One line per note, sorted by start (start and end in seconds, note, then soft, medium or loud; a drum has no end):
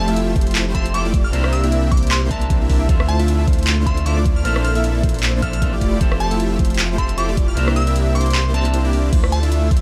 0.00 1.32 F1 medium
0.00 0.72 F3 loud
0.00 0.72 C4 medium
0.00 0.73 G4 medium
0.00 0.73 A4 medium
0.00 0.74 E5 loud
0.00 0.10 A5 medium
0.08 0.34 A3 loud
0.08 0.34 E4 medium
0.08 0.34 F4 medium
0.08 0.34 G4 medium
0.08 0.34 E5 loud
0.08 closed hi-hat medium
0.16 closed hi-hat medium
0.36 0.64 A3 medium
0.36 0.64 E4 medium
0.36 0.64 F4 medium
0.36 0.64 G4 medium
0.36 0.64 C5 medium
0.36 kick loud
0.36 closed hi-hat soft
0.41 closed hi-hat medium
0.47 closed hi-hat soft
0.51 closed hi-hat medium
0.55 clap loud
0.55 closed hi-hat medium
0.66 1.02 A3 medium
0.66 1.02 E4 medium
0.66 1.02 F4 medium
0.66 1.02 G4 medium
0.66 1.02 C5 loud
0.66 1.03 C5 medium
0.74 0.92 F3 medium
0.74 0.92 C4 medium
0.74 0.92 G4 medium
0.74 0.93 A4 medium
0.74 0.93 E5 loud
0.74 0.93 C6 loud
0.74 kick medium
0.74 closed hi-hat medium
0.86 closed hi-hat medium
0.93 1.05 F3 medium
0.93 1.06 C4 medium
0.93 1.06 G4 medium
0.93 1.06 A4 medium
0.93 1.06 E5 loud
0.93 1.08 D6 medium
0.93 closed hi-hat medium
1.05 1.31 A3 medium
1.05 1.31 E4 medium
1.05 1.31 F4 medium
1.05 1.31 G4 medium
1.05 1.31 D5 loud
1.14 kick loud
1.14 closed hi-hat medium
1.24 1.31 F6 loud
1.31 2.87 C2 medium
1.31 2.27 C3 loud
1.31 1.61 A#3 medium
1.31 2.28 C4 medium
1.31 1.61 D4 medium
1.31 2.29 D4 medium
1.31 1.61 E4 medium
1.31 1.61 G4 medium
1.31 2.29 A#4 medium
1.31 1.61 C5 medium
1.31 2.30 E5 loud
1.31 closed hi-hat medium
1.44 cross-stick medium
1.53 1.66 E6 medium
1.53 closed hi-hat medium
1.63 1.90 A#3 loud
1.63 1.90 D4 medium
1.63 1.90 E4 medium
1.63 1.90 G4 medium
1.63 1.90 E5 loud
1.63 closed hi-hat medium
1.72 closed hi-hat medium
1.92 2.19 A#3 medium
1.92 2.19 E4 medium
1.92 2.19 G4 medium
1.92 2.19 C5 medium
1.92 2.05 D6 medium
1.92 kick loud
1.92 closed hi-hat soft
1.97 closed hi-hat medium
2.03 closed hi-hat soft
2.07 closed hi-hat medium
2.11 2.25 C6 medium
2.11 clap loud
2.11 closed hi-hat medium
2.22 2.58 A#3 medium
2.22 2.58 D4 medium
2.22 2.58 E4 medium
2.22 2.58 G4 medium
2.22 2.58 C5 loud
2.29 2.86 C3 medium
2.29 2.86 C4 medium
2.29 2.87 D4 medium
2.29 2.87 A#4 medium
2.29 2.86 A5 medium
2.29 kick medium
2.29 closed hi-hat medium
2.33 2.88 E5 loud
2.41 closed hi-hat medium
2.50 kick loud
2.50 closed hi-hat medium
2.61 2.87 A#3 medium
2.61 2.87 D4 medium
2.61 2.87 E4 medium
2.61 2.87 G4 medium
2.61 2.87 E5 loud
2.70 kick medium
2.70 open hi-hat medium
2.87 4.43 D2 medium
2.87 3.83 D3 medium
2.87 3.84 A3 medium
2.87 3.17 A3 medium
2.87 3.84 C4 medium
2.87 3.17 D4 medium
2.87 3.17 F4 medium
2.87 3.85 F4 medium
2.87 3.17 C5 medium
2.87 kick loud
2.87 closed hi-hat medium
2.91 3.85 E5 loud
3.00 cross-stick medium
3.08 3.22 A5 medium
3.08 closed hi-hat medium
3.19 3.45 A3 loud
3.19 3.45 D4 medium
3.19 3.45 E4 medium
3.19 3.45 F4 medium
3.19 3.45 E5 loud
3.19 closed hi-hat medium
3.28 closed hi-hat medium
3.47 3.75 D4 medium
3.47 3.75 C5 medium
3.47 kick loud
3.47 closed hi-hat soft
3.53 closed hi-hat medium
3.59 closed hi-hat soft
3.63 closed hi-hat medium
3.67 clap loud
3.67 closed hi-hat medium
3.78 4.14 A3 medium
3.78 4.14 D4 medium
3.78 4.14 E4 medium
3.78 4.14 F4 medium
3.78 4.14 C5 loud
3.85 4.03 D3 medium
3.85 4.04 A3 medium
3.85 4.04 C4 medium
3.85 4.04 F4 medium
3.85 4.04 E5 loud
3.85 4.04 C6 medium
3.85 kick medium
3.85 closed hi-hat medium
3.97 closed hi-hat medium
4.05 4.17 D3 medium
4.05 4.17 A3 medium
4.05 4.18 C4 medium
4.05 4.18 F4 medium
4.05 4.18 E5 loud
4.05 4.20 D6 medium
4.05 closed hi-hat medium
4.17 4.43 A3 medium
4.17 4.43 D4 medium
4.17 4.43 E4 medium
4.17 4.43 F4 medium
4.17 4.43 D5 loud
4.26 kick loud
4.26 closed hi-hat medium
4.36 4.43 F6 medium
4.43 5.80 A#1 medium
4.43 5.39 A#2 medium
4.43 5.40 F3 medium
4.43 4.73 A#3 medium
4.43 5.40 C4 medium
4.43 4.73 D4 medium
4.43 5.40 D4 medium
4.43 4.73 E4 medium
4.43 4.73 A4 medium
4.43 5.41 A4 medium
4.43 4.73 C5 medium
4.43 4.63 F6 medium
4.43 closed hi-hat medium
4.47 5.41 E5 loud
4.56 cross-stick medium
4.64 4.71 F6 medium
4.64 closed hi-hat medium
4.75 5.01 A#3 loud
4.75 5.01 D4 loud
4.75 5.01 E4 medium
4.75 5.01 A4 medium
4.75 5.01 E5 loud
4.75 4.81 F6 medium
4.75 closed hi-hat medium
4.84 closed hi-hat medium
5.03 5.31 A#3 medium
5.03 5.31 D4 medium
5.03 5.31 E4 medium
5.03 5.31 A4 medium
5.03 5.31 C5 medium
5.03 kick loud
5.03 closed hi-hat soft
5.09 closed hi-hat medium
5.14 closed hi-hat soft
5.19 closed hi-hat medium
5.23 clap loud
5.23 closed hi-hat medium
5.34 5.70 A#3 medium
5.34 5.70 D4 medium
5.34 5.70 E4 medium
5.34 5.70 A4 medium
5.34 5.70 C5 loud
5.41 5.59 A#2 medium
5.41 5.60 F3 medium
5.41 5.60 C4 medium
5.41 5.60 D4 medium
5.41 5.60 A4 medium
5.41 5.60 E5 loud
5.41 5.51 F6 loud
5.41 kick medium
5.41 closed hi-hat medium
5.53 5.86 F6 medium
5.53 closed hi-hat medium
5.61 5.73 A#2 medium
5.61 5.73 F3 medium
5.61 5.73 C4 medium
5.61 5.74 D4 medium
5.61 5.74 A4 medium
5.61 5.74 E5 loud
5.61 kick loud
5.61 closed hi-hat medium
5.73 5.99 A3 medium
5.73 5.99 E4 medium
5.73 5.99 F4 medium
5.73 5.99 G4 medium
5.73 5.99 D5 loud
5.81 7.55 F1 medium
5.81 kick medium
5.81 closed hi-hat medium
5.99 6.95 F3 loud
5.99 6.29 A3 medium
5.99 6.96 C4 medium
5.99 6.29 E4 medium
5.99 6.29 F4 medium
5.99 6.96 G4 medium
5.99 6.97 A4 medium
5.99 6.29 C5 medium
5.99 kick loud
5.99 closed hi-hat medium
6.03 6.97 E5 loud
6.12 cross-stick medium
6.20 6.34 A5 medium
6.20 closed hi-hat medium
6.31 6.57 A3 loud
6.31 6.57 E4 medium
6.31 6.57 F4 medium
6.31 6.57 G4 medium
6.31 6.57 E5 loud
6.31 closed hi-hat medium
6.40 closed hi-hat medium
6.59 6.87 A3 medium
6.59 6.87 E4 medium
6.59 6.87 F4 medium
6.59 6.87 G4 medium
6.59 6.87 C5 medium
6.59 kick loud
6.59 closed hi-hat medium
6.65 closed hi-hat medium
6.70 closed hi-hat soft
6.74 closed hi-hat medium
6.79 clap loud
6.79 closed hi-hat medium
6.89 7.26 A3 medium
6.89 7.26 E4 medium
6.89 7.26 F4 medium
6.89 7.26 G4 medium
6.89 7.26 C5 loud
6.97 7.15 F3 medium
6.97 7.15 C4 medium
6.97 7.16 G4 medium
6.97 7.16 A4 medium
6.97 7.16 E5 loud
6.97 7.16 C6 loud
6.97 kick medium
6.97 closed hi-hat medium
7.09 closed hi-hat medium
7.17 7.29 F3 medium
7.17 7.29 C4 medium
7.17 7.29 G4 medium
7.17 7.30 A4 medium
7.17 7.30 E5 loud
7.17 7.31 D6 medium
7.17 closed hi-hat medium
7.28 7.55 A3 loud
7.28 7.55 E4 medium
7.28 7.55 F4 medium
7.28 7.55 G4 medium
7.28 7.55 D5 loud
7.37 kick loud
7.37 closed hi-hat medium
7.48 7.55 F6 medium
7.55 9.11 C2 medium
7.55 8.51 C3 loud
7.55 7.84 A#3 medium
7.55 8.52 C4 medium
7.55 7.84 D4 medium
7.55 8.52 D4 medium
7.55 7.84 E4 medium
7.55 7.84 G4 medium
7.55 8.53 A#4 medium
7.55 7.84 C5 medium
7.55 8.53 E5 loud
7.55 closed hi-hat medium
7.68 cross-stick medium
7.76 7.90 E6 medium
7.76 closed hi-hat medium
7.87 8.13 A#3 loud
7.87 8.13 D4 medium
7.87 8.13 E4 medium
7.87 8.13 G4 medium
7.87 8.13 E5 loud
7.87 closed hi-hat medium
7.96 closed hi-hat medium
8.15 8.43 A#3 medium
8.15 8.43 D4 medium
8.15 8.43 E4 medium
8.15 8.43 G4 medium
8.15 8.43 C5 medium
8.15 8.29 D6 medium
8.15 closed hi-hat medium
8.21 closed hi-hat medium
8.26 closed hi-hat medium
8.30 closed hi-hat medium
8.35 8.48 C6 loud
8.35 clap loud
8.35 closed hi-hat medium
8.45 8.82 A#3 medium
8.45 8.82 D4 medium
8.45 8.82 E4 medium
8.45 8.82 G4 medium
8.45 8.82 C5 loud
8.52 9.10 C3 loud
8.52 9.10 C4 medium
8.52 9.11 D4 medium
8.52 9.11 A#4 medium
8.52 9.12 E5 loud
8.52 9.09 A5 loud
8.52 closed hi-hat medium
8.65 closed hi-hat medium
8.74 closed hi-hat medium
8.84 9.10 A#3 medium
8.84 9.10 D4 medium
8.84 9.10 E4 medium
8.84 9.11 G4 medium
8.84 9.10 D5 loud
8.84 9.11 D5 loud
8.93 open hi-hat medium
9.13 9.81 D2 medium
9.13 9.40 A3 medium
9.13 9.40 D4 medium
9.13 9.40 E4 medium
9.13 9.40 F4 medium
9.13 9.40 C5 medium
9.13 kick loud
9.13 closed hi-hat medium
9.13 crash loud
9.24 cross-stick medium
9.32 9.46 A5 medium
9.32 closed hi-hat medium
9.43 9.69 A3 loud
9.43 9.69 D4 medium
9.43 9.69 E4 medium
9.43 9.69 F4 medium
9.43 9.69 E5 loud
9.43 closed hi-hat medium
9.52 closed hi-hat medium
9.71 9.81 C5 medium
9.71 kick loud
9.71 closed hi-hat medium
9.77 closed hi-hat medium